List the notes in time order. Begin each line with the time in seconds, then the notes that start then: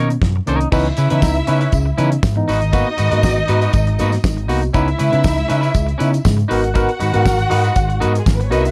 Already playing: B2 D#4
0.09 A#3 C#4, muted clean electric guitar stroke, closed hi-hat
0.21 F#2 B2, kick, snare
0.36 muted clean electric guitar stroke
0.46 C2 D#3 A#3 C#4 D#4 A#4 C#5, closed hi-hat
0.60 A#3 C#4, muted clean electric guitar stroke, closed hi-hat
0.72 C#2 E3 B3 C#4 D#4 E4 B4 E5, kick, crash, tambourine
0.85 closed hi-hat
0.97 C#3 C#4 E4 B4, closed hi-hat, tambourine
1.10 C#3 E3 B3 C#4 D#4 E4 B4, closed hi-hat
1.22 C#2 B3 D#4, kick, snare, tambourine
1.35 C#3, muted clean electric guitar stroke, closed hi-hat
1.47 C#3 B3 C#4 D#4 E4 B4, closed hi-hat, tambourine
1.61 C#4 E4 B4, closed hi-hat, tambourine
1.72 C#2 C#3, muted clean electric guitar stroke, kick, closed hi-hat, tambourine
1.86 muted clean electric guitar stroke
1.98 C#3 E3 B3 C#4 D#4 E4 B4, closed hi-hat, tambourine
2.11 B3 D#4, muted clean electric guitar stroke, closed hi-hat
2.23 G#2, kick, snare, tambourine
2.36 E3 B3 D#4, muted clean electric guitar stroke
2.48 G#1 D#4 F#4 B4 D#5, open hi-hat, tambourine
2.61 G#2 D#3, muted clean electric guitar stroke, closed hi-hat, tambourine
2.72 A#3 B3 D#4 F#4 B4, kick, closed hi-hat, tambourine
2.97 G#2 D#3 D#4 F#4 B4, closed hi-hat, tambourine
3.11 G#2 A#3 B3 D#4 F#4 B4, closed hi-hat
3.23 G#1 B3 F#4, muted clean electric guitar stroke, kick, snare, tambourine
3.36 G#2 D#3, muted clean electric guitar stroke
3.48 G#2 B3 D#4 F#4 B4, closed hi-hat, tambourine
3.61 D#4 F#4 B4, closed hi-hat, tambourine
3.73 G#1 G#2 D#3, muted clean electric guitar stroke, kick, closed hi-hat, tambourine
3.87 muted clean electric guitar stroke, closed hi-hat
3.99 G#2 A#3 B3 D#4 F#4 B4, closed hi-hat, tambourine
4.12 B3 F#4, muted clean electric guitar stroke, snare, closed hi-hat, tambourine
4.24 G#1 G#2 D#3, kick, snare, tambourine
4.37 muted clean electric guitar stroke, closed hi-hat
4.48 C2 A#3 B3 D#4 F#4 B4, open hi-hat, tambourine
4.62 B3 F#4, muted clean electric guitar stroke, closed hi-hat, tambourine
4.73 C#2 B3 C#4 D#4 E4 B4 E5, kick, closed hi-hat, tambourine
4.88 closed hi-hat
4.99 C#3 G#3 C#4 E4 B4, closed hi-hat, tambourine
5.12 C#3 B3 C#4 D#4 E4 B4, closed hi-hat
5.24 C#2 D#4 E4, muted clean electric guitar stroke, kick, snare, tambourine
5.37 C#3 G#3, muted clean electric guitar stroke, closed hi-hat, tambourine
5.48 C#3 C#4 D#4 E4 B4, closed hi-hat, tambourine
5.61 C#4 E4 B4, closed hi-hat, tambourine
5.73 C#2 C#3 G#3, muted clean electric guitar stroke, kick, closed hi-hat, tambourine
5.87 muted clean electric guitar stroke, closed hi-hat
5.98 C#3 B3 C#4 D#4 E4 B4, closed hi-hat, tambourine
6.12 D#4 E4, muted clean electric guitar stroke, closed hi-hat, tambourine
6.25 G#2 C#3 G#3, kick, snare, tambourine
6.37 muted clean electric guitar stroke, closed hi-hat
6.48 G#1 B3 D#4 F#4 A#4 B4 F#5, open hi-hat, tambourine
6.62 F#4 A#4, muted clean electric guitar stroke, closed hi-hat
6.74 B3 D#4 F#4 A#4 B4, kick, closed hi-hat, tambourine
6.89 closed hi-hat
7.00 G#2 D#3 D#4 F#4 B4, closed hi-hat, tambourine
7.13 G#2 B3 D#4 F#4 A#4 B4, closed hi-hat
7.25 G#1 F#4 A#4, kick, snare, tambourine
7.38 G#2 D#3, muted clean electric guitar stroke, closed hi-hat
7.50 G#2 D#4 F#4 A#4 B4, open hi-hat, tambourine
7.64 D#4 F#4 B4, closed hi-hat, tambourine
7.75 G#1 G#2 D#3, muted clean electric guitar stroke, kick, closed hi-hat, tambourine
7.89 muted clean electric guitar stroke, closed hi-hat
8.00 G#2 B3 D#4 F#4 A#4 B4, closed hi-hat, tambourine
8.14 F#4 A#4, muted clean electric guitar stroke, closed hi-hat, tambourine
8.18 G#3 G#4
8.25 G#1 G#2 D#3 A#3 A#4, kick, snare, tambourine
8.36 B3 B4, muted clean electric guitar stroke
8.41 closed hi-hat
8.45 C#4 C#5
8.50 C2 B3 D#4 F#4 A#4 B4 D#5, closed hi-hat, tambourine
8.61 E4 F#4 A#4 E5
8.65 muted clean electric guitar stroke, closed hi-hat